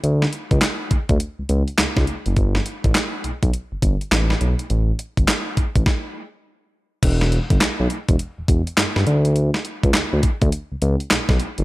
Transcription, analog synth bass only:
X:1
M:4/4
L:1/16
Q:"Swing 16ths" 1/4=103
K:D
V:1 name="Analog synth bass" clef=bass
D,,2 z C,, z2 D,, D,, z C,, C,, z C,, C,, z F,,, | G,,,2 z A,,, z2 B,,, B,,, z G,,, G,,, z A,,,2 B,,, z | A,,,2 z G,,, z2 A,,, A,,, z8 | E,,,3 G,,, B,,, B,,, z E,,, z E,,, E,,, z G,,, G,,, D,,2- |
D,,2 z C,, D,, D,, z D,, z C,, C,, z B,,, B,,, z F,,, |]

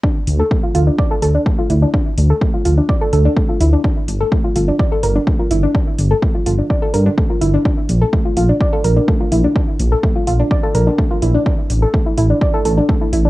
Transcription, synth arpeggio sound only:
X:1
M:4/4
L:1/16
Q:1/4=126
K:Dm
V:1 name="Synth arpeggio sound"
D z2 A A, F F D d A A D A, F E D | D z2 A A, F F D d A A D A, F E D | D z2 A A, F F D d A B D A, F E D | D z2 A A, F F D d A B D A, F E D |
D z2 A A, F F D d A B D A, F E D | D z2 A A, F F D d A B D A, F E D | D z2 A A, E E D d A A D A, E E D |]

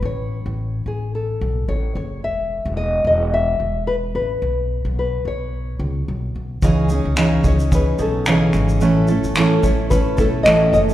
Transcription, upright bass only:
X:1
M:4/4
L:1/16
Q:"Swing 16ths" 1/4=109
K:Alyd
V:1 name="Upright bass" clef=bass
A,,,3 A,,,3 A,,,4 B,,,2 A,,,2 F,,,2 | E,,,3 E,,,3 E,,,4 E,,,4 A,,,2 | B,,,3 B,,,3 B,,,4 C,,2 B,,,2 B,,,2 | C,,3 C,,3 C,,4 B,,,4 G,,,2 |
A,,,3 A,,,3 A,,,4 B,,,2 A,,,2 F,,,2 |]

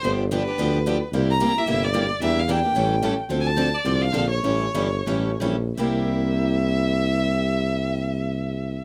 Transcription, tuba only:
X:1
M:4/4
L:1/8
Q:"Swing" 1/4=214
K:Cmix
V:1 name="Tuba" clef=bass
G,,,4 D,,4 | C,,4 G,,,4 | E,,4 A,,,4 | D,,4 C,,2 B,,,2 |
A,,,2 G,,,2 A,,,2 B,,,2 | C,,8- | C,,8 |]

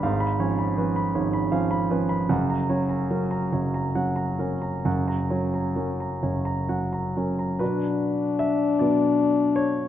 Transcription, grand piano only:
X:1
M:6/8
L:1/16
Q:3/8=50
K:F#phr
V:1 name="Grand piano"
^e b c b B b c b e b B b | f ^a c a ^A a c a f a A a | f ^a c a ^A a c a f a A a | [DFB]4 e2 [FBd]4 c2 |]
V:2 name="Grand piano" clef=bass
[^G,,,^G,,]2 [^E,C]2 [E,C]2 [G,,,G,,]2 [E,C]2 [E,C]2 | [F,,,F,,]2 [F,C]2 [F,C]2 [F,,,F,,]2 [F,C]2 [F,C]2 | [F,,,F,,]2 [F,C]2 [F,C]2 [F,,,F,,]2 [F,C]2 [F,C]2 | [B,,F,B,]6 [B,,F,B,D]6 |]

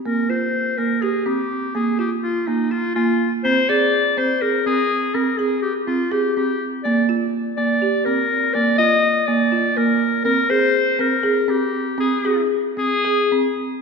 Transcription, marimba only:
X:1
M:7/8
L:1/8
Q:1/4=123
K:Ablyd
V:1 name="Marimba"
B, F2 B, G C2 | B, F2 B, F B,2 | C A2 C A C2 | C A2 C A C2 |
B, F2 B, G C2 | B, F2 B, F B,2 | C A2 C A C2 | C A2 C A C2 |]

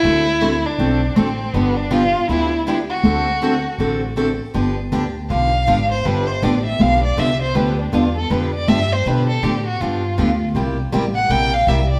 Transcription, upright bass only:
X:1
M:4/4
L:1/8
Q:"Swing" 1/4=160
K:Gmix
V:1 name="Upright bass" clef=bass
D,,4 B,,,2 A,,,2 | G,,,4 D,,4 | D,,4 A,,,4 | G,,,2 D,,2 B,,,2 _A,,,2 |
G,,,2 A,,,2 B,,,2 C,,2 | D,,2 E,,2 F,,2 G,,2 | B,,2 A,,2 G,,2 D,,2 | C,,2 A,,,2 _B,,,2 C,,2 |]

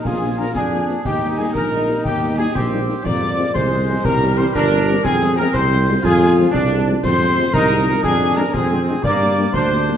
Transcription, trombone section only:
X:1
M:6/8
L:1/8
Q:3/8=120
K:Fdor
V:1 name="Trombone section"
F3 D3 | E6- | E3 C3 | B,3 A,3 |
G,3 D3 | C6 | F3 D3 | C3 E3 |
D3 C3 | B,3 D3 |]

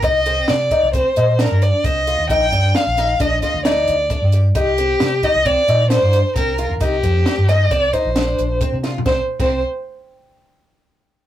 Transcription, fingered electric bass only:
X:1
M:5/4
L:1/16
Q:1/4=133
K:Cm
V:1 name="Fingered electric bass" clef=bass
C,,4 C,2 z C,,2 z B,,3 G,,2 z C,,3 E,, | B,,,2 G,,2 z B,,,3 B,,,2 z D,,3 D,,2 z G,,3 | C,,4 C,2 z C,,2 z B,,3 G,,2 z C,,3 E,, | C,,2 F,,2 z G,,3 C,,2 z B,,,3 B,,,2 z C,3 |
C,, z2 C,,2 z12 z3 |]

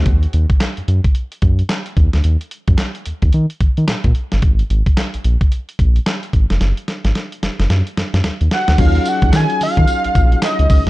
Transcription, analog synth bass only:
X:1
M:4/4
L:1/16
Q:"Swing 16ths" 1/4=110
K:Ebm
V:1 name="Analog synth bass" clef=bass
E,,2 E,, z2 G,, G,, z3 G,,2 z2 E,, =D,, | E,, z2 G,, z2 E,, E,, E, z E, E, B,, B,, z =G,,, | A,,,2 A,,, z2 B,,, B,,, z3 B,,,2 z2 A,,, F,,, | G,,, z2 A,,, z2 G,,, G,,, G,, z G,, G,, E,, E,, z =D,, |
E,,2 z E,, E, z E, E, z B,,, B,,,2 z D,, D,, =D,, |]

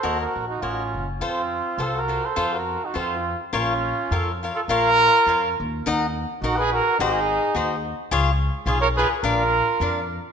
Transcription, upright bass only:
X:1
M:2/4
L:1/8
Q:"Swing" 1/4=104
K:Bbm
V:1 name="Upright bass" clef=bass
E,, B,,, =A,,, G,,, | F,,2 C,,2 | F,,2 F,,2 | B,,,2 F,,2 |
B,,,2 F,, E,, | [K:Ebm] E,,2 B,,,2 | A,,,2 E,,2 | D,,2 C,,2 |
B,,,2 F,,2 |]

